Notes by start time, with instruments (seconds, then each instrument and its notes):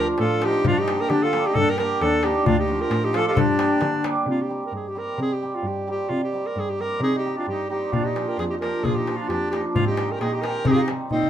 Already playing: hammered dulcimer D3 F3 A3 D4 F4
0.08 darbuka tek
0.18 cello A2, accordion F4, alto saxophone A4, darbuka tek
0.31 darbuka tek
0.39 hammered dulcimer D3 F3 A3 D4 F4, darbuka tek
0.45 accordion D#4, alto saxophone G4
0.54 darbuka tek
0.65 cello G2, alto saxophone F4, darbuka dum
0.69 accordion D4
0.77 accordion D#4, alto saxophone G4, darbuka tek
0.87 hammered dulcimer D3 G3 A#3 D4 G4, darbuka tek
1.01 accordion G4, alto saxophone A#4
1.09 cello D3, accordion D4, alto saxophone G4, darbuka tek
1.23 accordion F4, alto saxophone A4
1.33 hammered dulcimer D3 G3 A#3 D4 G4, darbuka tek
1.46 accordion D#4, alto saxophone G4
1.54 cello G2, alto saxophone A4, darbuka dum
1.59 accordion D4
1.69 accordion G4, alto saxophone A#4, darbuka tek
1.78 hammered dulcimer D3 G3 A#3 D4 G4, alto saxophone A#4, darbuka tek
1.82 accordion G4
2.01 cello D#2, accordion D4, alto saxophone A4, darbuka tek
2.23 hammered dulcimer D3 G3 A#3 D4 G4, accordion D#4, alto saxophone G4, darbuka tek
2.46 cello D2, accordion D4, alto saxophone F4, darbuka dum
2.58 accordion D#4, alto saxophone G4, darbuka tek
2.68 hammered dulcimer D3 F3 A3 D4 F4
2.79 accordion G4, alto saxophone A#4
2.90 cello A2, darbuka tek
3.03 accordion D#4, alto saxophone G4
3.13 hammered dulcimer D3 F3 A3 D4 F4, accordion F4, darbuka tek
3.17 alto saxophone A4
3.27 accordion D#4 F4, alto saxophone G4 A4
3.33 cello G2, accordion D4, alto saxophone A4, darbuka dum
3.38 alto saxophone G4
3.57 hammered dulcimer D3 G3 A#3 D4 G4, darbuka tek
3.81 cello D3, darbuka tek
3.94 darbuka tek
4.04 hammered dulcimer D3 G3 A#3 D4 G4, darbuka tek
4.16 darbuka tek
4.26 cello C3, alto saxophone F4
4.42 alto saxophone G4
4.49 hammered dulcimer G3 C4 D#4 G4
4.66 alto saxophone A#4
4.72 cello G2, alto saxophone G#4
4.88 alto saxophone G4
4.95 hammered dulcimer G3 C4 D#4 G4, alto saxophone A#4
5.18 cello C3, alto saxophone G#4
5.33 alto saxophone G4
5.42 hammered dulcimer G3 C4 D#4 G4
5.55 alto saxophone F4
5.63 cello G2
5.67 alto saxophone G4
5.87 hammered dulcimer G3 C4 D#4 G4, alto saxophone G4
6.09 cello C3, alto saxophone F4
6.23 alto saxophone G4
6.32 hammered dulcimer G3 C4 D#4 G4
6.46 alto saxophone A#4
6.56 cello G2, alto saxophone G#4
6.69 alto saxophone G4
6.78 hammered dulcimer G3 C4 D#4 G4, alto saxophone A#4
7.00 cello C3, accordion D#4, alto saxophone G#4
7.15 accordion D#4, alto saxophone G4
7.25 hammered dulcimer G3 C4 D#4 G4
7.36 accordion D4, alto saxophone F4
7.47 cello G2, accordion D#4, alto saxophone G4
7.69 hammered dulcimer G3 C4 D#4 G4, accordion D#4, alto saxophone G4
7.92 cello A#2, accordion D4, alto saxophone F4, darbuka dum
8.04 accordion D#4, alto saxophone G4
8.13 hammered dulcimer F3 A#3 D4 F4, darbuka tek
8.27 accordion G4, alto saxophone A#4, darbuka tek
8.36 cello F2, accordion F4, alto saxophone G#4, darbuka tek
8.50 accordion D#4, alto saxophone G4, darbuka tek
8.61 hammered dulcimer F3 A#3 D4 F4, accordion G4, alto saxophone A#4, darbuka tek
8.83 cello A#2, accordion F4, alto saxophone G#4, darbuka dum
8.95 accordion D#4, alto saxophone G4
9.06 hammered dulcimer F3 A#3 D4 F4, darbuka tek
9.16 accordion D4, alto saxophone F4, darbuka tek
9.29 cello F2, accordion D4, alto saxophone G4, darbuka tek
9.43 darbuka tek
9.51 hammered dulcimer F3 A#3 D4, accordion D#4, alto saxophone G4, darbuka tek
9.55 hammered dulcimer F4
9.75 cello G#2, alto saxophone F4, darbuka dum
9.79 accordion C4
9.87 accordion D#4, alto saxophone G4
9.97 hammered dulcimer D#3 G#3 C4 D#4, darbuka tek
10.11 alto saxophone A#4, darbuka tek
10.15 accordion G4
10.21 cello A#2, accordion D#4, alto saxophone G#4, darbuka tek
10.33 accordion D#4, alto saxophone G4, darbuka tek
10.41 hammered dulcimer D#3 G#3 C4 D#4, alto saxophone A#4, darbuka tek
10.47 accordion G4
10.64 cello C3, alto saxophone G#4, darbuka dum
10.68 accordion D#4, alto saxophone G4
10.73 accordion F4, alto saxophone G#4
10.78 accordion D#4, alto saxophone G4, darbuka tek
10.88 hammered dulcimer D#3 G3 C4 D#4, darbuka tek
11.01 darbuka tek
11.11 cello A#2, accordion C4, alto saxophone D#4, darbuka dum
11.23 darbuka dum